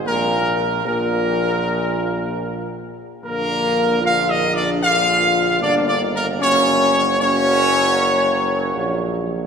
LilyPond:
<<
  \new Staff \with { instrumentName = "Trumpet section" } { \time 4/4 \key bes \mixolydian \tempo 4 = 76 bes'4 bes'2~ bes'8 r8 | bes'4 \tuplet 3/2 { f''8 ees''8 d''8 } f''4 \tuplet 3/2 { d''8 d''8 bes'8 } | des''4 des''2~ des''8 r8 | }
  \new Staff \with { instrumentName = "French horn section" } { \time 4/4 \key bes \mixolydian bes4 bes2~ bes8 r8 | bes4 \tuplet 3/2 { f'8 ees'8 d'8 } f'4 \tuplet 3/2 { d'8 d'8 bes8 } | des'4 des'2~ des'8 r8 | }
  \new Staff \with { instrumentName = "Trombone section" } { \clef bass \time 4/4 \key bes \mixolydian << { bes,4 bes,2~ bes,8 r8 | bes4 bes4 bes4 bes4 | bes4 bes2. | } \\ { r1 | d4 d4 d4 d8 ees8 | ges4 ges2. | } >> }
  \new Staff \with { instrumentName = "Tuba" } { \clef bass \time 4/4 \key bes \mixolydian bes,,4 bes,,2~ bes,,8 r8 | bes,,2. g,,4 | ges,,2. bes,,4 | }
>>